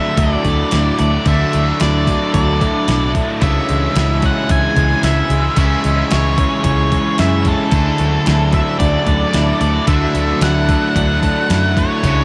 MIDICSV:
0, 0, Header, 1, 8, 480
1, 0, Start_track
1, 0, Tempo, 539084
1, 1123, Time_signature, 4, 2, 24, 8
1, 10901, End_track
2, 0, Start_track
2, 0, Title_t, "Lead electric guitar"
2, 0, Program_c, 0, 29
2, 0, Note_on_c, 0, 76, 87
2, 160, Note_off_c, 0, 76, 0
2, 164, Note_on_c, 0, 74, 90
2, 877, Note_off_c, 0, 74, 0
2, 887, Note_on_c, 0, 74, 88
2, 1133, Note_off_c, 0, 74, 0
2, 1137, Note_on_c, 0, 76, 92
2, 1610, Note_off_c, 0, 76, 0
2, 1614, Note_on_c, 0, 74, 91
2, 2071, Note_off_c, 0, 74, 0
2, 2082, Note_on_c, 0, 74, 80
2, 2769, Note_off_c, 0, 74, 0
2, 3053, Note_on_c, 0, 76, 90
2, 3790, Note_on_c, 0, 78, 91
2, 3791, Note_off_c, 0, 76, 0
2, 4017, Note_off_c, 0, 78, 0
2, 4020, Note_on_c, 0, 80, 91
2, 4460, Note_off_c, 0, 80, 0
2, 4491, Note_on_c, 0, 76, 86
2, 4969, Note_off_c, 0, 76, 0
2, 4980, Note_on_c, 0, 76, 93
2, 5443, Note_off_c, 0, 76, 0
2, 5447, Note_on_c, 0, 73, 93
2, 5906, Note_off_c, 0, 73, 0
2, 5917, Note_on_c, 0, 73, 90
2, 6408, Note_off_c, 0, 73, 0
2, 6412, Note_on_c, 0, 76, 86
2, 6655, Note_off_c, 0, 76, 0
2, 6656, Note_on_c, 0, 69, 86
2, 7600, Note_off_c, 0, 69, 0
2, 7604, Note_on_c, 0, 76, 84
2, 7823, Note_off_c, 0, 76, 0
2, 7827, Note_on_c, 0, 74, 82
2, 8545, Note_off_c, 0, 74, 0
2, 8555, Note_on_c, 0, 74, 85
2, 8788, Note_off_c, 0, 74, 0
2, 8792, Note_on_c, 0, 76, 85
2, 9283, Note_on_c, 0, 78, 95
2, 9290, Note_off_c, 0, 76, 0
2, 9748, Note_off_c, 0, 78, 0
2, 9759, Note_on_c, 0, 78, 96
2, 10494, Note_on_c, 0, 73, 92
2, 10499, Note_off_c, 0, 78, 0
2, 10901, Note_off_c, 0, 73, 0
2, 10901, End_track
3, 0, Start_track
3, 0, Title_t, "Ambient pad"
3, 0, Program_c, 1, 92
3, 0, Note_on_c, 1, 62, 73
3, 0, Note_on_c, 1, 66, 74
3, 0, Note_on_c, 1, 76, 66
3, 0, Note_on_c, 1, 81, 81
3, 3016, Note_off_c, 1, 66, 0
3, 3019, Note_off_c, 1, 81, 0
3, 3022, Note_off_c, 1, 62, 0
3, 3074, Note_on_c, 1, 61, 78
3, 3079, Note_on_c, 1, 80, 84
3, 3080, Note_on_c, 1, 68, 68
3, 6862, Note_off_c, 1, 61, 0
3, 6864, Note_off_c, 1, 80, 0
3, 6865, Note_off_c, 1, 68, 0
3, 6873, Note_on_c, 1, 66, 72
3, 6876, Note_on_c, 1, 62, 83
3, 6878, Note_on_c, 1, 81, 84
3, 8770, Note_off_c, 1, 76, 0
3, 8795, Note_on_c, 1, 74, 67
3, 10676, Note_off_c, 1, 66, 0
3, 10678, Note_off_c, 1, 62, 0
3, 10679, Note_off_c, 1, 81, 0
3, 10695, Note_off_c, 1, 74, 0
3, 10725, Note_on_c, 1, 61, 78
3, 10725, Note_on_c, 1, 68, 67
3, 10727, Note_on_c, 1, 76, 74
3, 10728, Note_on_c, 1, 80, 87
3, 10901, Note_off_c, 1, 61, 0
3, 10901, Note_off_c, 1, 68, 0
3, 10901, Note_off_c, 1, 76, 0
3, 10901, Note_off_c, 1, 80, 0
3, 10901, End_track
4, 0, Start_track
4, 0, Title_t, "Distorted electric guitar"
4, 0, Program_c, 2, 30
4, 0, Note_on_c, 2, 50, 63
4, 0, Note_on_c, 2, 54, 67
4, 0, Note_on_c, 2, 57, 66
4, 161, Note_on_c, 2, 64, 66
4, 399, Note_off_c, 2, 50, 0
4, 406, Note_on_c, 2, 62, 66
4, 636, Note_off_c, 2, 64, 0
4, 639, Note_on_c, 2, 64, 67
4, 872, Note_off_c, 2, 62, 0
4, 879, Note_off_c, 2, 54, 0
4, 883, Note_on_c, 2, 62, 62
4, 1124, Note_off_c, 2, 57, 0
4, 1127, Note_on_c, 2, 50, 67
4, 1360, Note_on_c, 2, 54, 68
4, 1598, Note_off_c, 2, 54, 0
4, 1609, Note_on_c, 2, 54, 67
4, 1847, Note_on_c, 2, 57, 67
4, 2079, Note_off_c, 2, 64, 0
4, 2082, Note_on_c, 2, 64, 69
4, 2085, Note_off_c, 2, 62, 0
4, 2328, Note_off_c, 2, 50, 0
4, 2328, Note_on_c, 2, 62, 68
4, 2560, Note_off_c, 2, 64, 0
4, 2564, Note_on_c, 2, 64, 66
4, 2792, Note_off_c, 2, 62, 0
4, 2803, Note_on_c, 2, 62, 63
4, 2808, Note_off_c, 2, 54, 0
4, 3040, Note_on_c, 2, 49, 71
4, 3045, Note_off_c, 2, 62, 0
4, 3048, Note_off_c, 2, 57, 0
4, 3287, Note_on_c, 2, 52, 72
4, 3518, Note_off_c, 2, 52, 0
4, 3522, Note_on_c, 2, 52, 69
4, 3764, Note_on_c, 2, 56, 67
4, 3995, Note_off_c, 2, 64, 0
4, 3999, Note_on_c, 2, 64, 72
4, 4233, Note_on_c, 2, 61, 71
4, 4243, Note_off_c, 2, 49, 0
4, 4471, Note_off_c, 2, 64, 0
4, 4474, Note_on_c, 2, 64, 67
4, 4703, Note_off_c, 2, 61, 0
4, 4713, Note_on_c, 2, 61, 60
4, 4952, Note_on_c, 2, 49, 70
4, 4965, Note_off_c, 2, 56, 0
4, 5191, Note_off_c, 2, 52, 0
4, 5194, Note_on_c, 2, 52, 67
4, 5427, Note_off_c, 2, 52, 0
4, 5430, Note_on_c, 2, 52, 61
4, 5662, Note_on_c, 2, 56, 60
4, 5903, Note_off_c, 2, 64, 0
4, 5906, Note_on_c, 2, 64, 68
4, 5919, Note_off_c, 2, 61, 0
4, 6144, Note_on_c, 2, 61, 64
4, 6158, Note_off_c, 2, 49, 0
4, 6390, Note_off_c, 2, 64, 0
4, 6393, Note_on_c, 2, 64, 65
4, 6615, Note_off_c, 2, 61, 0
4, 6626, Note_on_c, 2, 61, 62
4, 6872, Note_off_c, 2, 56, 0
4, 6874, Note_on_c, 2, 50, 72
4, 6875, Note_off_c, 2, 61, 0
4, 6901, Note_off_c, 2, 52, 0
4, 6901, Note_off_c, 2, 64, 0
4, 7114, Note_on_c, 2, 54, 63
4, 7348, Note_off_c, 2, 54, 0
4, 7359, Note_on_c, 2, 54, 67
4, 7606, Note_on_c, 2, 57, 66
4, 7847, Note_on_c, 2, 64, 70
4, 8077, Note_off_c, 2, 50, 0
4, 8086, Note_on_c, 2, 62, 65
4, 8328, Note_off_c, 2, 64, 0
4, 8332, Note_on_c, 2, 64, 61
4, 8553, Note_off_c, 2, 62, 0
4, 8559, Note_off_c, 2, 54, 0
4, 8564, Note_on_c, 2, 62, 62
4, 8802, Note_off_c, 2, 57, 0
4, 8812, Note_on_c, 2, 50, 71
4, 9047, Note_on_c, 2, 54, 68
4, 9273, Note_off_c, 2, 54, 0
4, 9283, Note_on_c, 2, 54, 69
4, 9517, Note_on_c, 2, 57, 65
4, 9756, Note_off_c, 2, 64, 0
4, 9759, Note_on_c, 2, 64, 68
4, 9760, Note_off_c, 2, 62, 0
4, 10003, Note_on_c, 2, 62, 68
4, 10004, Note_off_c, 2, 50, 0
4, 10238, Note_off_c, 2, 64, 0
4, 10241, Note_on_c, 2, 64, 74
4, 10472, Note_off_c, 2, 62, 0
4, 10479, Note_off_c, 2, 54, 0
4, 10483, Note_on_c, 2, 62, 59
4, 10716, Note_off_c, 2, 57, 0
4, 10720, Note_off_c, 2, 62, 0
4, 10723, Note_on_c, 2, 49, 78
4, 10901, Note_off_c, 2, 49, 0
4, 10901, Note_off_c, 2, 64, 0
4, 10901, End_track
5, 0, Start_track
5, 0, Title_t, "Overdriven electric guitar"
5, 0, Program_c, 3, 29
5, 0, Note_on_c, 3, 50, 67
5, 0, Note_on_c, 3, 57, 63
5, 0, Note_on_c, 3, 62, 68
5, 0, Note_on_c, 3, 64, 77
5, 154, Note_on_c, 3, 54, 72
5, 382, Note_off_c, 3, 57, 0
5, 393, Note_on_c, 3, 57, 59
5, 402, Note_off_c, 3, 50, 0
5, 635, Note_off_c, 3, 64, 0
5, 638, Note_on_c, 3, 64, 75
5, 871, Note_off_c, 3, 57, 0
5, 881, Note_on_c, 3, 57, 65
5, 1120, Note_off_c, 3, 62, 0
5, 1126, Note_on_c, 3, 50, 70
5, 1350, Note_off_c, 3, 57, 0
5, 1361, Note_off_c, 3, 54, 0
5, 1361, Note_on_c, 3, 57, 68
5, 1603, Note_off_c, 3, 64, 0
5, 1607, Note_on_c, 3, 64, 73
5, 1851, Note_on_c, 3, 62, 60
5, 2088, Note_on_c, 3, 54, 68
5, 2310, Note_off_c, 3, 57, 0
5, 2321, Note_on_c, 3, 57, 69
5, 2327, Note_off_c, 3, 50, 0
5, 2561, Note_off_c, 3, 64, 0
5, 2564, Note_on_c, 3, 64, 75
5, 2797, Note_off_c, 3, 57, 0
5, 2808, Note_on_c, 3, 57, 62
5, 3047, Note_off_c, 3, 57, 0
5, 3047, Note_on_c, 3, 49, 70
5, 3048, Note_off_c, 3, 54, 0
5, 3049, Note_off_c, 3, 62, 0
5, 3290, Note_on_c, 3, 56, 69
5, 3525, Note_off_c, 3, 64, 0
5, 3529, Note_on_c, 3, 64, 77
5, 3775, Note_on_c, 3, 61, 71
5, 4016, Note_on_c, 3, 52, 72
5, 4238, Note_off_c, 3, 56, 0
5, 4247, Note_off_c, 3, 49, 0
5, 4248, Note_on_c, 3, 56, 62
5, 4487, Note_off_c, 3, 64, 0
5, 4491, Note_on_c, 3, 64, 75
5, 4718, Note_off_c, 3, 56, 0
5, 4729, Note_on_c, 3, 56, 64
5, 4970, Note_off_c, 3, 61, 0
5, 4971, Note_on_c, 3, 49, 70
5, 5192, Note_off_c, 3, 56, 0
5, 5203, Note_on_c, 3, 56, 65
5, 5444, Note_off_c, 3, 64, 0
5, 5448, Note_on_c, 3, 64, 71
5, 5686, Note_on_c, 3, 61, 65
5, 5920, Note_off_c, 3, 52, 0
5, 5924, Note_on_c, 3, 52, 74
5, 6144, Note_off_c, 3, 56, 0
5, 6155, Note_on_c, 3, 56, 60
5, 6167, Note_off_c, 3, 49, 0
5, 6392, Note_off_c, 3, 64, 0
5, 6396, Note_on_c, 3, 64, 74
5, 6631, Note_off_c, 3, 56, 0
5, 6641, Note_on_c, 3, 56, 58
5, 6882, Note_off_c, 3, 56, 0
5, 6883, Note_on_c, 3, 50, 71
5, 6884, Note_off_c, 3, 61, 0
5, 6910, Note_off_c, 3, 52, 0
5, 6910, Note_off_c, 3, 64, 0
5, 7116, Note_on_c, 3, 57, 64
5, 7349, Note_on_c, 3, 64, 68
5, 7589, Note_on_c, 3, 62, 63
5, 7832, Note_on_c, 3, 54, 74
5, 8066, Note_off_c, 3, 57, 0
5, 8077, Note_on_c, 3, 57, 64
5, 8082, Note_off_c, 3, 50, 0
5, 8314, Note_off_c, 3, 64, 0
5, 8318, Note_on_c, 3, 64, 69
5, 8548, Note_off_c, 3, 57, 0
5, 8559, Note_on_c, 3, 57, 66
5, 8794, Note_off_c, 3, 62, 0
5, 8801, Note_on_c, 3, 50, 73
5, 9031, Note_off_c, 3, 57, 0
5, 9035, Note_off_c, 3, 54, 0
5, 9042, Note_on_c, 3, 57, 68
5, 9276, Note_off_c, 3, 64, 0
5, 9280, Note_on_c, 3, 64, 78
5, 9529, Note_on_c, 3, 62, 67
5, 9767, Note_on_c, 3, 54, 70
5, 9994, Note_off_c, 3, 57, 0
5, 9999, Note_off_c, 3, 50, 0
5, 10005, Note_on_c, 3, 57, 63
5, 10244, Note_off_c, 3, 64, 0
5, 10247, Note_on_c, 3, 64, 72
5, 10475, Note_off_c, 3, 57, 0
5, 10486, Note_on_c, 3, 57, 62
5, 10719, Note_on_c, 3, 49, 72
5, 10721, Note_off_c, 3, 57, 0
5, 10722, Note_off_c, 3, 54, 0
5, 10722, Note_off_c, 3, 62, 0
5, 10901, Note_off_c, 3, 49, 0
5, 10901, Note_off_c, 3, 64, 0
5, 10901, End_track
6, 0, Start_track
6, 0, Title_t, "Overdriven electric guitar"
6, 0, Program_c, 4, 29
6, 0, Note_on_c, 4, 50, 88
6, 0, Note_on_c, 4, 57, 92
6, 0, Note_on_c, 4, 62, 102
6, 1107, Note_off_c, 4, 50, 0
6, 1118, Note_off_c, 4, 57, 0
6, 1120, Note_on_c, 4, 50, 93
6, 1123, Note_off_c, 4, 62, 0
6, 1132, Note_on_c, 4, 57, 94
6, 1153, Note_on_c, 4, 62, 106
6, 3030, Note_off_c, 4, 50, 0
6, 3036, Note_off_c, 4, 57, 0
6, 3038, Note_on_c, 4, 49, 99
6, 3047, Note_off_c, 4, 62, 0
6, 3053, Note_on_c, 4, 56, 102
6, 3070, Note_on_c, 4, 61, 102
6, 4942, Note_off_c, 4, 49, 0
6, 4953, Note_on_c, 4, 49, 97
6, 4955, Note_off_c, 4, 56, 0
6, 4964, Note_off_c, 4, 61, 0
6, 4967, Note_on_c, 4, 56, 90
6, 4982, Note_on_c, 4, 61, 93
6, 6863, Note_off_c, 4, 49, 0
6, 6867, Note_on_c, 4, 50, 88
6, 6870, Note_off_c, 4, 56, 0
6, 6878, Note_off_c, 4, 61, 0
6, 6887, Note_on_c, 4, 57, 99
6, 6902, Note_on_c, 4, 62, 97
6, 8778, Note_off_c, 4, 50, 0
6, 8788, Note_off_c, 4, 57, 0
6, 8795, Note_off_c, 4, 62, 0
6, 8801, Note_on_c, 4, 50, 79
6, 8816, Note_on_c, 4, 57, 97
6, 8831, Note_on_c, 4, 62, 100
6, 10703, Note_off_c, 4, 50, 0
6, 10711, Note_off_c, 4, 57, 0
6, 10712, Note_on_c, 4, 49, 89
6, 10718, Note_off_c, 4, 62, 0
6, 10732, Note_on_c, 4, 56, 91
6, 10749, Note_on_c, 4, 61, 100
6, 10901, Note_off_c, 4, 49, 0
6, 10901, Note_off_c, 4, 56, 0
6, 10901, Note_off_c, 4, 61, 0
6, 10901, End_track
7, 0, Start_track
7, 0, Title_t, "Fingered electric bass"
7, 0, Program_c, 5, 33
7, 157, Note_on_c, 5, 38, 89
7, 311, Note_off_c, 5, 38, 0
7, 401, Note_on_c, 5, 38, 79
7, 554, Note_off_c, 5, 38, 0
7, 648, Note_on_c, 5, 38, 82
7, 798, Note_off_c, 5, 38, 0
7, 891, Note_on_c, 5, 38, 78
7, 1041, Note_off_c, 5, 38, 0
7, 1121, Note_on_c, 5, 38, 97
7, 1275, Note_off_c, 5, 38, 0
7, 1376, Note_on_c, 5, 38, 75
7, 1525, Note_off_c, 5, 38, 0
7, 1617, Note_on_c, 5, 38, 80
7, 1918, Note_off_c, 5, 38, 0
7, 2088, Note_on_c, 5, 38, 92
7, 2392, Note_off_c, 5, 38, 0
7, 2565, Note_on_c, 5, 35, 86
7, 2870, Note_off_c, 5, 35, 0
7, 3044, Note_on_c, 5, 37, 98
7, 3197, Note_off_c, 5, 37, 0
7, 3293, Note_on_c, 5, 37, 81
7, 3443, Note_off_c, 5, 37, 0
7, 3526, Note_on_c, 5, 37, 92
7, 3830, Note_off_c, 5, 37, 0
7, 3999, Note_on_c, 5, 37, 89
7, 4154, Note_off_c, 5, 37, 0
7, 4242, Note_on_c, 5, 37, 80
7, 4396, Note_off_c, 5, 37, 0
7, 4480, Note_on_c, 5, 37, 81
7, 4634, Note_off_c, 5, 37, 0
7, 4718, Note_on_c, 5, 37, 86
7, 4873, Note_off_c, 5, 37, 0
7, 4958, Note_on_c, 5, 37, 97
7, 5112, Note_off_c, 5, 37, 0
7, 5209, Note_on_c, 5, 37, 76
7, 5360, Note_off_c, 5, 37, 0
7, 5453, Note_on_c, 5, 37, 86
7, 5755, Note_off_c, 5, 37, 0
7, 5919, Note_on_c, 5, 37, 86
7, 6225, Note_off_c, 5, 37, 0
7, 6405, Note_on_c, 5, 42, 76
7, 6709, Note_off_c, 5, 42, 0
7, 6875, Note_on_c, 5, 38, 89
7, 7030, Note_off_c, 5, 38, 0
7, 7120, Note_on_c, 5, 38, 78
7, 7273, Note_off_c, 5, 38, 0
7, 7364, Note_on_c, 5, 38, 93
7, 7668, Note_off_c, 5, 38, 0
7, 7830, Note_on_c, 5, 38, 95
7, 7986, Note_off_c, 5, 38, 0
7, 8070, Note_on_c, 5, 38, 84
7, 8226, Note_off_c, 5, 38, 0
7, 8318, Note_on_c, 5, 38, 80
7, 8471, Note_off_c, 5, 38, 0
7, 8557, Note_on_c, 5, 38, 85
7, 8711, Note_off_c, 5, 38, 0
7, 8794, Note_on_c, 5, 38, 93
7, 8948, Note_off_c, 5, 38, 0
7, 9036, Note_on_c, 5, 38, 79
7, 9190, Note_off_c, 5, 38, 0
7, 9272, Note_on_c, 5, 38, 86
7, 9578, Note_off_c, 5, 38, 0
7, 9759, Note_on_c, 5, 38, 92
7, 10063, Note_off_c, 5, 38, 0
7, 10241, Note_on_c, 5, 42, 84
7, 10544, Note_off_c, 5, 42, 0
7, 10717, Note_on_c, 5, 37, 95
7, 10869, Note_off_c, 5, 37, 0
7, 10901, End_track
8, 0, Start_track
8, 0, Title_t, "Drums"
8, 155, Note_on_c, 9, 46, 75
8, 157, Note_on_c, 9, 36, 111
8, 244, Note_off_c, 9, 46, 0
8, 246, Note_off_c, 9, 36, 0
8, 397, Note_on_c, 9, 46, 54
8, 398, Note_on_c, 9, 36, 75
8, 486, Note_off_c, 9, 46, 0
8, 487, Note_off_c, 9, 36, 0
8, 634, Note_on_c, 9, 46, 70
8, 643, Note_on_c, 9, 38, 106
8, 723, Note_off_c, 9, 46, 0
8, 732, Note_off_c, 9, 38, 0
8, 878, Note_on_c, 9, 46, 57
8, 967, Note_off_c, 9, 46, 0
8, 1119, Note_on_c, 9, 46, 62
8, 1122, Note_on_c, 9, 36, 101
8, 1208, Note_off_c, 9, 46, 0
8, 1211, Note_off_c, 9, 36, 0
8, 1364, Note_on_c, 9, 46, 55
8, 1453, Note_off_c, 9, 46, 0
8, 1601, Note_on_c, 9, 46, 76
8, 1610, Note_on_c, 9, 38, 104
8, 1690, Note_off_c, 9, 46, 0
8, 1699, Note_off_c, 9, 38, 0
8, 1845, Note_on_c, 9, 36, 85
8, 1849, Note_on_c, 9, 46, 56
8, 1934, Note_off_c, 9, 36, 0
8, 1938, Note_off_c, 9, 46, 0
8, 2084, Note_on_c, 9, 46, 67
8, 2085, Note_on_c, 9, 36, 102
8, 2173, Note_off_c, 9, 46, 0
8, 2174, Note_off_c, 9, 36, 0
8, 2326, Note_on_c, 9, 36, 73
8, 2327, Note_on_c, 9, 46, 52
8, 2415, Note_off_c, 9, 36, 0
8, 2416, Note_off_c, 9, 46, 0
8, 2563, Note_on_c, 9, 46, 69
8, 2572, Note_on_c, 9, 38, 103
8, 2652, Note_off_c, 9, 46, 0
8, 2661, Note_off_c, 9, 38, 0
8, 2804, Note_on_c, 9, 36, 73
8, 2805, Note_on_c, 9, 46, 50
8, 2893, Note_off_c, 9, 36, 0
8, 2894, Note_off_c, 9, 46, 0
8, 3041, Note_on_c, 9, 46, 63
8, 3045, Note_on_c, 9, 36, 98
8, 3130, Note_off_c, 9, 46, 0
8, 3134, Note_off_c, 9, 36, 0
8, 3284, Note_on_c, 9, 46, 47
8, 3373, Note_off_c, 9, 46, 0
8, 3522, Note_on_c, 9, 46, 69
8, 3531, Note_on_c, 9, 38, 108
8, 3611, Note_off_c, 9, 46, 0
8, 3620, Note_off_c, 9, 38, 0
8, 3760, Note_on_c, 9, 46, 54
8, 3765, Note_on_c, 9, 36, 83
8, 3849, Note_off_c, 9, 46, 0
8, 3854, Note_off_c, 9, 36, 0
8, 4001, Note_on_c, 9, 46, 72
8, 4003, Note_on_c, 9, 36, 105
8, 4090, Note_off_c, 9, 46, 0
8, 4092, Note_off_c, 9, 36, 0
8, 4242, Note_on_c, 9, 46, 55
8, 4244, Note_on_c, 9, 36, 73
8, 4332, Note_off_c, 9, 46, 0
8, 4333, Note_off_c, 9, 36, 0
8, 4480, Note_on_c, 9, 46, 71
8, 4489, Note_on_c, 9, 38, 97
8, 4569, Note_off_c, 9, 46, 0
8, 4578, Note_off_c, 9, 38, 0
8, 4721, Note_on_c, 9, 46, 53
8, 4810, Note_off_c, 9, 46, 0
8, 4954, Note_on_c, 9, 46, 75
8, 4961, Note_on_c, 9, 36, 92
8, 5043, Note_off_c, 9, 46, 0
8, 5050, Note_off_c, 9, 36, 0
8, 5200, Note_on_c, 9, 46, 52
8, 5289, Note_off_c, 9, 46, 0
8, 5437, Note_on_c, 9, 46, 76
8, 5446, Note_on_c, 9, 38, 106
8, 5526, Note_off_c, 9, 46, 0
8, 5535, Note_off_c, 9, 38, 0
8, 5679, Note_on_c, 9, 36, 90
8, 5679, Note_on_c, 9, 46, 59
8, 5768, Note_off_c, 9, 36, 0
8, 5768, Note_off_c, 9, 46, 0
8, 5912, Note_on_c, 9, 46, 70
8, 5918, Note_on_c, 9, 36, 98
8, 6001, Note_off_c, 9, 46, 0
8, 6008, Note_off_c, 9, 36, 0
8, 6160, Note_on_c, 9, 36, 68
8, 6162, Note_on_c, 9, 46, 49
8, 6249, Note_off_c, 9, 36, 0
8, 6251, Note_off_c, 9, 46, 0
8, 6394, Note_on_c, 9, 46, 62
8, 6403, Note_on_c, 9, 38, 98
8, 6483, Note_off_c, 9, 46, 0
8, 6492, Note_off_c, 9, 38, 0
8, 6632, Note_on_c, 9, 46, 49
8, 6636, Note_on_c, 9, 36, 74
8, 6721, Note_off_c, 9, 46, 0
8, 6725, Note_off_c, 9, 36, 0
8, 6869, Note_on_c, 9, 46, 61
8, 6875, Note_on_c, 9, 36, 100
8, 6958, Note_off_c, 9, 46, 0
8, 6964, Note_off_c, 9, 36, 0
8, 7108, Note_on_c, 9, 46, 46
8, 7197, Note_off_c, 9, 46, 0
8, 7356, Note_on_c, 9, 46, 68
8, 7365, Note_on_c, 9, 38, 102
8, 7445, Note_off_c, 9, 46, 0
8, 7454, Note_off_c, 9, 38, 0
8, 7591, Note_on_c, 9, 46, 53
8, 7596, Note_on_c, 9, 36, 82
8, 7680, Note_off_c, 9, 46, 0
8, 7685, Note_off_c, 9, 36, 0
8, 7834, Note_on_c, 9, 46, 66
8, 7835, Note_on_c, 9, 36, 104
8, 7923, Note_off_c, 9, 46, 0
8, 7924, Note_off_c, 9, 36, 0
8, 8072, Note_on_c, 9, 46, 52
8, 8075, Note_on_c, 9, 36, 73
8, 8161, Note_off_c, 9, 46, 0
8, 8164, Note_off_c, 9, 36, 0
8, 8311, Note_on_c, 9, 46, 71
8, 8320, Note_on_c, 9, 38, 106
8, 8400, Note_off_c, 9, 46, 0
8, 8409, Note_off_c, 9, 38, 0
8, 8555, Note_on_c, 9, 46, 54
8, 8644, Note_off_c, 9, 46, 0
8, 8791, Note_on_c, 9, 46, 71
8, 8795, Note_on_c, 9, 36, 107
8, 8880, Note_off_c, 9, 46, 0
8, 8884, Note_off_c, 9, 36, 0
8, 9036, Note_on_c, 9, 46, 53
8, 9125, Note_off_c, 9, 46, 0
8, 9272, Note_on_c, 9, 46, 78
8, 9281, Note_on_c, 9, 38, 104
8, 9361, Note_off_c, 9, 46, 0
8, 9370, Note_off_c, 9, 38, 0
8, 9517, Note_on_c, 9, 36, 90
8, 9517, Note_on_c, 9, 46, 60
8, 9606, Note_off_c, 9, 36, 0
8, 9606, Note_off_c, 9, 46, 0
8, 9757, Note_on_c, 9, 36, 108
8, 9760, Note_on_c, 9, 46, 76
8, 9846, Note_off_c, 9, 36, 0
8, 9849, Note_off_c, 9, 46, 0
8, 9997, Note_on_c, 9, 36, 74
8, 10001, Note_on_c, 9, 46, 56
8, 10086, Note_off_c, 9, 36, 0
8, 10090, Note_off_c, 9, 46, 0
8, 10239, Note_on_c, 9, 46, 73
8, 10248, Note_on_c, 9, 38, 103
8, 10328, Note_off_c, 9, 46, 0
8, 10337, Note_off_c, 9, 38, 0
8, 10478, Note_on_c, 9, 36, 78
8, 10482, Note_on_c, 9, 46, 54
8, 10567, Note_off_c, 9, 36, 0
8, 10571, Note_off_c, 9, 46, 0
8, 10716, Note_on_c, 9, 36, 93
8, 10717, Note_on_c, 9, 46, 69
8, 10806, Note_off_c, 9, 36, 0
8, 10806, Note_off_c, 9, 46, 0
8, 10901, End_track
0, 0, End_of_file